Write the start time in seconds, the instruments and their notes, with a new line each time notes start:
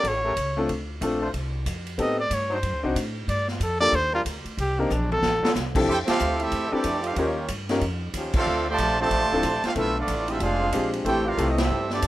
Already playing: trombone section C#4 G4 A4 A#4
0.04 upright bass A1, kick, ride
0.08 trumpet C#5
0.24 trombone section A3 C#4 G4 A#4
0.36 upright bass C#2, kick, hi-hat pedal, ride
0.57 grand piano A3 C4 D4 F4 A4
0.69 upright bass D2, kick, ride
1.01 upright bass A#1, grand piano A3 C4 D4 F4 A4, kick, hi-hat pedal, ride
1.21 trombone section A3 D4 F4 C5
1.33 upright bass C2, kick, ride
1.66 upright bass F2, kick, hi-hat pedal, ride
1.86 ride
1.98 upright bass A2, grand piano B3 C4 D#4 G4 A4, trumpet D#5, kick, ride
2.20 trumpet D5
2.30 upright bass G2, trumpet C#5, kick, hi-hat pedal, ride
2.48 trombone section F#3 D4 D#4 C5
2.54 trumpet C5
2.63 upright bass F#2, kick, ride
2.73 upright bass D2
2.83 upright bass C2, grand piano C4 D4 D#4 F#4 C5
2.95 upright bass A2, kick, hi-hat pedal, ride
3.28 upright bass G2, trumpet D5, kick, ride
3.48 trumpet F4, snare
3.60 upright bass F2, trumpet A4, kick, hi-hat pedal, ride
3.80 grand piano A#3 D4 F4 G4 A4, trumpet D5
3.92 upright bass D#2, trumpet C5, kick, ride
4.12 trombone section G3 D4 F4 A#4, trumpet F4
4.25 upright bass D2, kick, hi-hat pedal, ride
4.45 muted upright bass stroke, ride
4.57 upright bass C2, trumpet G4, kick, ride
4.79 trumpet A#3, grand piano C4 D4 D#4 G4 A#4
4.90 upright bass A#1, trumpet D4, hi-hat pedal, high tom
5.12 trumpet A4, high tom
5.22 upright bass A1, snare
5.43 trombone section F#3 D#4 F4 A4, muted upright bass stroke, snare
5.55 upright bass C2, snare, hi-hat pedal
5.75 grand piano F3 C4 D4 E4 G4 A4, kick, crash
5.87 upright bass F2, trombone section C4 E4 G4, trumpet section E4 A4 C5 G5, kick
6.05 trombone section A3 C4 F4, trumpet section C4 G4 F5, muted upright bass stroke, snare, ride
6.09 trumpet section A4
6.19 upright bass D2, hi-hat pedal
6.37 trombone section A3 C4 E4, trumpet section C4 G4 A4 E5, ride
6.52 upright bass E2, kick, ride
6.68 trombone section E3 A3 D4, trumpet section C4 G4 A4 D5
6.72 trombone section G3 D4 E4 A4, grand piano C4 D4 E4 G4 A4, muted upright bass stroke
6.84 upright bass F2, kick, hi-hat pedal, ride
7.01 trombone section A3 C4 F4, trumpet section C4 G4 A4, ride
7.05 trumpet section F5
7.13 upright bass D#2, trombone section G3 A#3 C#4 D#4, trumpet section C#5, kick, ride
7.17 trombone section F3 G4, trumpet section A#3 F4 G4, grand piano C#4 D#4 F4 G4 A#4
7.48 upright bass G2, kick, hi-hat pedal, ride
7.69 grand piano C#4 D#4 F4 G4 A#4, snare, ride
7.81 upright bass F2, kick, ride
8.14 upright bass D#2, trombone section F3 C#4 D#4 G4, kick, hi-hat pedal, ride
8.33 trombone section A3 C4 F4, trumpet section A4, muted upright bass stroke, kick, crash
8.38 trumpet section D4 C5 F5
8.46 upright bass D2
8.68 trombone section C3 F3 A3, trumpet section F4 C5 D5 A5
8.78 upright bass A#1, kick, hi-hat pedal, ride
8.99 trombone section C3 F3 A3 C4 D4 A4, trumpet section F4 C5 D5 A5
9.10 upright bass A1, kick, ride
9.22 upright bass F1
9.32 upright bass D1, trombone section F3 C4 D4 A4, grand piano C4 D4 E4 F4 A4
9.43 upright bass A#1, kick, hi-hat pedal, ride
9.64 trombone section A3 C4 F4, trumpet section D4 A4 C5 F5, muted upright bass stroke, snare, ride
9.75 upright bass B1, grand piano A3 B3 D4 F4 A4, trumpet section C4 F4 A4 E5, trombone section E4, kick, ride
9.97 trombone section F3 A3 D4, trumpet section B3 F4 A4 D5
10.07 upright bass A1, kick, hi-hat pedal, ride
10.28 trombone section D3 G#3 C4 E4 G4, trumpet section C4 F4 A4 E5, ride
10.40 upright bass F1, trombone section G#3 D4 F4, trumpet section D4 G#4 C5 F5, kick, ride
10.60 trombone section D3 G#3 C4 F4
10.72 upright bass A#1, grand piano G#3 C4 D4 F4 G4, kick, hi-hat pedal, ride
10.93 ride
11.05 upright bass A1, trombone section E3 A3 C4 E4 G4, grand piano A3 C4 E4 G4 A4, trumpet section E4 A4 C5 G5, kick, ride
11.25 trumpet section D4 G4 A#4 F5, trombone section F4
11.37 upright bass C2, trombone section E3 A3 C4 G4, grand piano A3 C4 E4 G4 A4, kick, hi-hat pedal, ride
11.50 trumpet section D#5
11.57 trombone section G3 C4 E4, trumpet section C4 G4 A4 E5, snare, ride
11.70 upright bass G2
11.90 trombone section E3 G3 D4, trumpet section C4 G4 A4 D5, snare
12.02 upright bass F2, kick, hi-hat pedal, ride